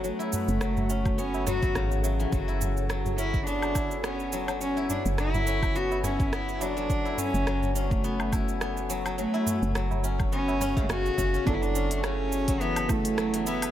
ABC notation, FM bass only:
X:1
M:4/4
L:1/16
Q:"Swing 16ths" 1/4=105
K:F#m
V:1 name="FM bass" clef=bass
z3 F,,,8 z G,,,3 z | F,,,16- | F,,,2 z F,,,12- F,,, | z3 F,,,12- F,,, |
z3 F,,,8 z F,,, z F,,, z | F,,,16 |]